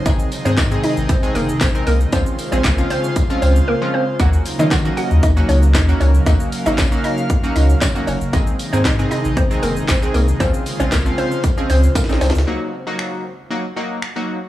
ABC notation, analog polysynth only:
X:1
M:4/4
L:1/16
Q:1/4=116
K:Ebdor
V:1 name="Analog polysynth"
[E,A,CEA]2 z [E,A,CEA] z [E,A,CEA]2 z2 [E,A,CEA]2 z2 [E,A,CEB]2 z | [F,A,CDF]2 z [F,A,CDA] z [F,A,CDF]2 z2 [F,A,CDF]2 z2 [F,A,CDF]2 z | [G,B,DEG]2 z [G,B,DEF] z [G,B,DEG]2 z2 [G,B,DEG]2 z2 [G,B,DEG]2 z | [G,B,DEG]2 z [G,B,DEG] z [G,B,DEG]2 z2 [G,B,DEG]2 z2 [G,B,DEG]2 z |
[E,A,CEA]2 z [E,A,CEA] z [E,A,CEA]2 z2 [E,A,CEA]2 z2 [E,A,CEA]2 z | [F,A,CDF]2 z [F,A,CDF] z [F,A,CDF]2 z2 [F,A,CDA]2 z2 [F,A,CDE]2 z | [G,B,EG]2 z [G,B,EG]3 z2 [G,B,EG] z [G,B,EG]2 z [G,B,EG]2 z |]